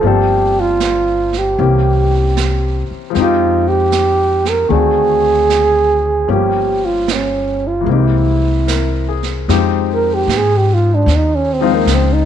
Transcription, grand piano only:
0.01 F3 A#3 C4
0.06 D4 A4
1.59 E3 A#3 C4 C#4 G4
3.10 F3 G#3
3.15 C4 D#4
3.21 G4
4.69 D#3 A3 C4 D4
4.74 F#4
6.28 F3 G3 A#3 C#4 G4
7.81 E3 G#3
7.86 A#3 C4
7.91 G4
8.67 A#4
9.09 G#4
9.49 F3 G#3 C4 D#4 G4
11.61 F3 G#3 C4 D#4 F4

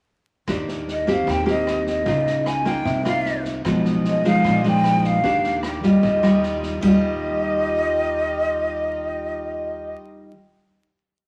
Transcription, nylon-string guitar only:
0.48 D#3 A#3 D4 G4
1.07 A#3 C4 G4
1.26 D#3
1.46 A#3 C4 G4
2.06 C#3 A#3 D#4 F4
2.65 A#3 D#4 F4
2.85 C3
3.05 A#3 D#4 F4
3.65 B2 F3 G#3 D#4
4.25 F3 G#3 D#4
4.45 A#2
4.64 F3 G#3 D#4
5.23 D#3 A#3 D4 G4
5.83 G3 F4
6.03 D#3
6.23 G3 F4
6.81 D#3 G3
6.87 F4

